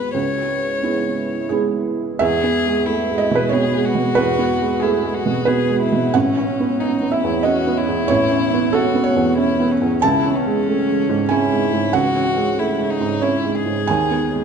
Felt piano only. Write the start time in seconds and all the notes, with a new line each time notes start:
Already playing: D#2 G#3 B3 F#4
0.14 C#2
0.83 G#3 B3 E4
1.49 G#3 B3 E4 G#4
2.19 E2 E5
2.44 B3
2.66 G#3
2.88 A3
3.10 G#3
3.18 D#5
3.31 B2
3.35 B4
3.49 B3 C#5
3.74 G#3
3.95 B2
4.15 E2 B4
4.38 B3
4.61 G#3
4.80 A3 G#4
5.04 G#3
5.26 B2
5.45 B3 B4
5.69 G#3
5.92 B2
6.14 A1 F#5
6.37 C#4
6.60 B3
6.82 C#4
7.02 B3
7.12 E5
7.24 E2
7.43 C#4 D#5
7.67 B3
7.88 E2
8.08 A1 C#5
8.31 C#4
8.53 B3
8.73 C#4 A4
8.95 B3
9.04 C#5
9.16 E2
9.37 C#4
9.60 B3
9.81 E2
10.02 C#2 A5
10.26 C#4
10.46 G#3
10.67 A3
10.88 G#3
11.09 G#2
11.29 C#4 G#5
11.52 G#3
11.73 G#2
11.93 C#2 F#5
12.16 C#4
12.36 G#3
12.58 A3
12.78 G#3
13.01 G#2
13.22 C#4 C#5
13.44 G#3
13.66 G#2
13.87 D#2 G#5
14.11 B3
14.32 G#3